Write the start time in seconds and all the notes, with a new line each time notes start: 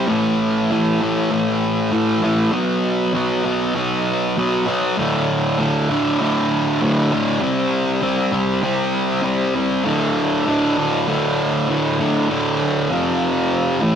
0.07 A2 E3 A3
0.71 A2 E3 A3
1.01 A2 E3 A3
1.31 A2 E3 A3
1.92 A2 E3 A3
2.23 A2 E3 A3
2.52 B2 F#3 B3
3.13 B2 F#3 B3
3.44 B2 F#3 B3
3.75 B2 F#3 B3
4.38 B2 F#3 B3
4.66 B2 F#3 B3
4.98 D2 A2 D3
5.58 D2 A2 D3
5.90 D2 A2 D3
6.20 D2 A2 D3
6.81 D2 A2 D3
7.12 D2 A2 D3
7.40 C3 G3 C4
8.02 C3 G3 C4
8.32 C3 G3 C4
8.63 C3 G3 C4
9.23 C3 G3 C4
9.55 C3 G3 C4
9.84 D2 A2 D3
10.46 D2 A2 D3
10.77 D2 A2 D3
11.08 D2 A2 D3
11.68 D2 A2 D3
11.99 D2 A2 D3
12.29 D2 A2 D3
12.91 F2 C3 F3
13.81 A2 E3 A3